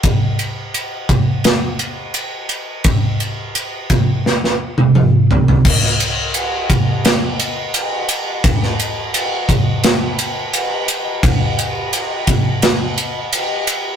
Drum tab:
CC |----------------|----------------|x---------------|----------------|
RD |x-x-x-x-x-x-x-x-|x-x-x-x---------|--x-x-x-x-x-x-x-|x-x-x-x-x-x-x-x-|
SD |--------o-------|--------oo------|-o------o-------|-o------o-------|
T1 |----------------|-----------o----|----------------|----------------|
T2 |----------------|------------o---|----------------|----------------|
FT |----------------|--------------oo|----------------|----------------|
BD |o-----o---------|o-----o---------|o-----o---------|o-----o---------|

CC |----------------|
RD |x-x-x-x-x-x-x-x-|
SD |--------o-------|
T1 |----------------|
T2 |----------------|
FT |----------------|
BD |o-----o---------|